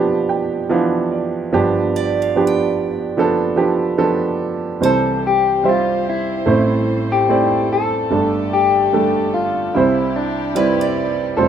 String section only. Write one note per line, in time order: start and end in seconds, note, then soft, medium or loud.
4.83 8.10 G3 medium
4.83 8.09 C4 medium
4.83 6.47 G4 medium
4.83 8.09 C5 medium
6.48 9.72 A4 medium
8.10 9.72 D3 medium
8.10 9.72 A3 medium
8.10 9.72 G4 medium
9.73 11.48 C3 medium
9.73 11.48 G3 medium
9.73 11.35 E4 medium
9.73 11.35 G4 medium
11.36 11.48 F4 medium
11.36 11.48 G4 medium